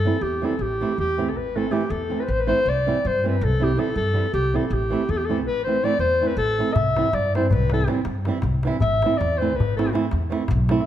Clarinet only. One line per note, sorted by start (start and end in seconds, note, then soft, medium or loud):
0.00 0.24 A4 loud
0.22 0.47 G4 medium
0.45 0.63 A4 medium
0.62 0.99 G4 medium
0.99 1.30 G4 loud
1.29 1.38 A4 medium
1.37 1.58 B4 medium
1.56 1.74 A4 medium
1.72 1.92 G4 medium
1.90 2.21 A4 loud
2.20 2.23 B4 medium
2.20 2.27 C5 medium
2.25 2.31 B4 medium
2.30 2.40 C5 loud
2.38 2.49 B4 medium
2.47 2.70 C5 loud
2.69 3.08 D5 loud
3.07 3.26 C5 loud
3.28 3.46 B4 medium
3.44 3.65 A4 loud
3.64 3.81 G4 loud
3.79 3.96 A4 loud
3.96 4.31 A4 loud
4.34 4.58 G4 loud
4.56 4.65 A4 medium
4.65 4.75 A4 medium
4.73 5.12 G4 loud
5.10 5.19 A4 loud
5.18 5.27 G4 medium
5.25 5.39 A4 loud
5.47 5.63 B4 loud
5.64 5.86 C5 loud
5.84 6.00 D5 loud
6.00 6.29 C5 loud
6.27 6.37 B4 medium
6.38 6.75 A4 loud
6.73 7.16 E5 loud
7.15 7.35 D5 loud
7.36 7.48 C5 medium
7.48 7.54 C5 medium
7.52 7.72 B4 loud
7.74 7.89 A4 medium
8.82 9.19 E5 loud
9.18 9.39 D5 loud
9.38 9.57 C5 medium
9.56 9.76 B4 medium
9.77 9.93 A4 medium
10.80 10.86 E5 medium